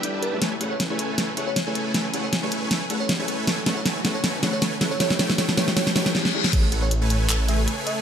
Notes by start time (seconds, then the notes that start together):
Already playing: G1 E3 G3 B3 G4 B4 E5 G5
0.02 B3 D4 E4 G4 D5, closed hi-hat
0.14 G3 G4 B4 E5 A5
0.23 B4, closed hi-hat
0.32 B1 A3 C#4 E4 G#4 C#5
0.41 A1 C#3 A3 G#4 A4 B4 C#5 G#5, snare, closed hi-hat, riser
0.60 A3 C#4 E4 G#4 A4 B4 C#5 F#5, closed hi-hat
0.71 C#5
0.80 snare, closed hi-hat
0.89 A3 C#4 E4 G#4 A4 B4 C#5 G#5
0.99 closed hi-hat
1.18 A1 A3 A4 B4 C#5 G#5, snare, closed hi-hat
1.36 A3 C#4 E4 G#4 A4 B4 C#5 F#5, closed hi-hat
1.47 C#5
1.56 snare, closed hi-hat
1.66 A3 C#4 E4 G#4 A4 B4 C#5 G#5
1.75 closed hi-hat
1.94 A1 A3 A4 B4 C#5 G#5, snare, closed hi-hat
2.12 A3 C#4 E4 G#4 A4 B4 C#5 F#5, closed hi-hat
2.24 C#5
2.33 snare, closed hi-hat
2.42 A3 C#4 E4 G#4 A4 B4 C#5 G#5
2.52 E1, closed hi-hat
2.71 A3 A4 B4 C#5 G#5, snare, closed hi-hat
2.89 A3 C#4 E4 G#4 A4 B4 C#5 F#5, closed hi-hat
3.00 A1 C#5
3.09 snare, closed hi-hat
3.18 A3 C#4 E4 G#4 A4 B4 C#5 G#5
3.28 closed hi-hat
3.47 A1 D3 A3 C#4 F#4 A4 B4 C#5 G#5, snare, closed hi-hat
3.65 A3 C#4 E4 G#4 A4 B4 C#5 F#5, snare, closed hi-hat
3.77 C#5
3.86 A3 A4 B4 C#5 G#5, snare, closed hi-hat
4.04 A3 C#4 E4 G#4 A4 B4 C#5 F#5, snare, closed hi-hat
4.15 C#5
4.24 A1 A3 A4 B4 C#5 G#5, snare, closed hi-hat
4.42 A3 C#4 E4 G#4 A4 B4 C#5 F#5, snare, closed hi-hat
4.53 C#5
4.62 A3 A4 B4 C#5 G#5, snare, closed hi-hat
4.80 A3 C#4 E4 G#4 A4 B4 C#5 F#5, snare, closed hi-hat
4.91 C#5
4.99 G1 E3 A3 B3 C#4 E4 G4 A4 B4 C#5 G5, snare, closed hi-hat
5.10 snare
5.18 A3 C#4 E4 G4 A4 B4 C#5 G5, snare, closed hi-hat
5.30 snare
5.37 A3 C#4 E4 G4 A4 B4 C#5 G5, snare, closed hi-hat
5.49 snare
5.57 D2 A3 C#4 E4 G4 A4 B4 C#5 G5, snare, closed hi-hat
5.68 snare
5.76 A3 C#4 E4 G4 A4 B4 C#5 G5, snare, closed hi-hat, reverse cymbal
5.87 snare
5.95 E1 A3 C#4 E4 G4 A4 B4 C#5 G5, snare, closed hi-hat
6.06 snare
6.14 A3 C#4 E4 G4 C#5, snare
6.25 snare
6.33 A3 C#4 E4 G4 C#5
6.44 snare
6.53 A1 C#3 A3 G#4 A4 B4 C#5 G#5, kick, closed hi-hat, crash
6.72 A3 A4 B4 C#5 F#5, closed hi-hat
6.82 C#5
6.91 closed hi-hat
7.02 A3 A4 B4 C#5 G#5
7.10 closed hi-hat
7.29 A1 A3 A4 B4 C#5 A5, clap, closed hi-hat
7.48 A3 A4 B4 C#5 E5 G#5, closed hi-hat
7.68 closed hi-hat
7.78 A3 A4 B4 C#5 G#5
7.87 E5, closed hi-hat